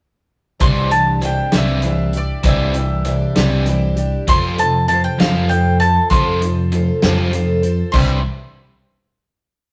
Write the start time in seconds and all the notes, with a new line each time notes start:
0.60 C2 C3 E3 G3 C4 D4 E4 G4 C6, kick, closed hi-hat
0.90 C3 E3 D4 E4 G4 A5, closed hi-hat
1.21 C3 E3 C4 D4 E4 G4, closed hi-hat
1.25 G5
1.52 C2 C3 E3 G3 C4 D4 E4 G4, snare, closed hi-hat
1.58 E5
1.82 C3 E3 C4 D4 E4, closed hi-hat
1.87 G4
2.13 D4 G4, closed hi-hat
2.17 E4 D5
2.43 C2 C3 E3 G3 C4 D4 E4 G4, kick, closed hi-hat
2.48 E5
2.74 C3 E3 D4 G4, closed hi-hat
2.78 E4
3.05 C3 E3 C4 D4 E4 G4, closed hi-hat
3.36 C2 C3 E3 G3 C4 D4 E4 G4, snare, closed hi-hat
3.66 C3 E3 C4 D4 E4 G4, closed hi-hat
3.96 D4 E4 G4, closed hi-hat
4.27 F2 C3 F3 F4 A4 C5 C6, kick, closed hi-hat
4.57 F2 C3 F4 A4 C5 A5, closed hi-hat
4.88 F2 C3 F3 F4 A4 A5, closed hi-hat
4.93 C5
5.04 G5
5.19 F2 C3 F3 F4 A4 C5 F5, snare, closed hi-hat
5.23 F3
5.49 F2 C3 F3 F4 A4 G5, closed hi-hat
5.53 C5
5.80 A4 C5 A5, closed hi-hat
5.84 F4
6.10 F2 C3 F3 F4 A4 C5 C6, kick, closed hi-hat
6.42 F2 C3 F4 A4 C5, closed hi-hat
6.72 F2 C3 F3 F4 A4 C5, closed hi-hat
7.02 F2 C3 F3 F4 A4 C5, snare, closed hi-hat
7.31 F2 C3 F3 F4 A4 C5, closed hi-hat
7.62 F4 A4 C5, closed hi-hat
7.92 C2 C3 E3 G3 C4 D4 E4 G4 C6, kick, crash